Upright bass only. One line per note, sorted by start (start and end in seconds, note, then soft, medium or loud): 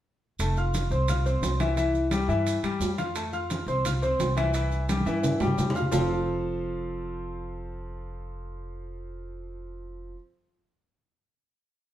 0.39 0.88 F1 medium
0.90 1.39 C2 medium
1.41 2.23 C2 medium
2.28 2.61 G2 medium
2.63 2.79 G2 medium
2.80 3.61 F2 medium
3.66 4.15 C2 loud
4.19 5.00 C2 medium
5.06 5.38 G2 medium
5.40 5.57 G2 medium
5.57 5.88 F2 loud
5.92 10.14 F1 loud